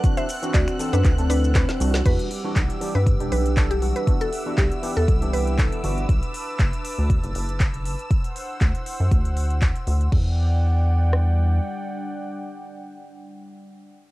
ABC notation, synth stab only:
X:1
M:4/4
L:1/16
Q:"Swing 16ths" 1/4=119
K:Em
V:1 name="Synth stab"
[E,CDF]2 z [E,CDF]3 [E,CDA] z2 [E,CDA]3 [E,CDB]2 [E,CDF]2 | [E,G,DF]2 z [E,G,DF]3 [E,G,DG] z2 [E,G,DG]3 [E,G,DA]2 [E,G,DF]2 | [E,B,DF]2 z [E,B,DF]3 [E,B,DG] z2 [E,B,DG]3 [E,B,DA]2 [E,B,DF]2 | z16 |
z16 | z16 | z16 |]